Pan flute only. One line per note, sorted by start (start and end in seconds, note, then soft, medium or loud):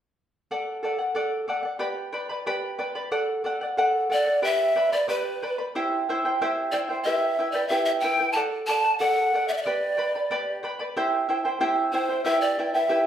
4.13 4.42 D5 medium
4.44 4.94 E5 medium
4.93 5.10 D5 medium
5.09 5.58 B4 medium
6.72 6.79 D5 medium
7.04 7.53 E5 medium
7.52 7.69 D5 medium
7.68 7.84 E5 medium
7.85 7.91 E5 medium
8.00 8.32 G5 medium
8.32 8.40 A5 medium
8.67 8.97 A5 medium
8.99 9.50 F#5 loud
9.48 9.55 E5 medium
9.54 9.58 D5 medium
9.54 9.62 E5 medium
9.62 10.58 D5 medium
11.92 12.23 C5 medium
12.24 12.42 E5 medium
12.41 12.75 D5 medium
12.74 13.07 E5 medium